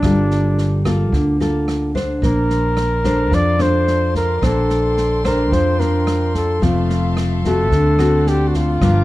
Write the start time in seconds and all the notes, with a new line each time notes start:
Already playing: D4
0.03 G1 G3 A#3 F4 A4, kick, cross-stick, snare
0.31 snare
0.58 snare
0.85 A#3 F4 A4, kick, cross-stick, snare
1.12 D2 D3, kick, snare
1.40 A#3 F4 A4, snare
1.68 cross-stick, snare
1.95 D4 C5, kick, snare
2.21 A#1 A#3 D5 A5 C6, kick, snare
2.25 A#4
2.50 snare
2.77 cross-stick, snare
3.04 D4 A4 C5, kick, snare
3.31 F2 F3 D5, kick, snare
3.59 D4 A4 C5, cross-stick, snare
3.87 snare
4.15 A#4, kick, snare
4.41 A#1 A#3 D4 A4 C5 G5, kick, cross-stick, snare
4.70 snare
4.97 snare
5.24 D4 A4 A#4 C5, kick, cross-stick, snare
5.52 F2 F3 C5, kick, snare
5.79 D4 A#4 C5, snare
6.07 cross-stick, snare
6.35 A4, kick, snare
6.62 F1 F3 A3 C4 F4 A4 E5 F5, kick, snare
6.90 snare
7.17 cross-stick, snare
7.44 A3 C4 F#4 A4, kick, snare
7.71 D2 D3 A4 D5 F#5, kick, snare
7.99 A3 C4 F#4, cross-stick, snare
8.27 G4, snare
8.48 F#4
8.54 F4, kick, snare
8.81 G1 G2 F3 A#3 D4 A#4 F5 G5 D6, kick, cross-stick, snare